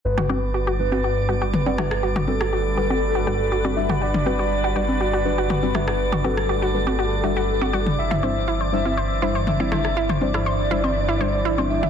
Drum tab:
SD |--------------rr|---r------------|--------------rr|---r------------|
T2 |-o----------o-o-|-o-------------o|-o----------o-o-|-o-------------o|
CG |--o----o-----o--|--o----o-----o--|--o----o-----o--|--o----o-----o--|

SD |--------------rr|---r------------|
T2 |-o----------o-o-|-o-------------o|
CG |--o----o-----o--|--o----o-----o--|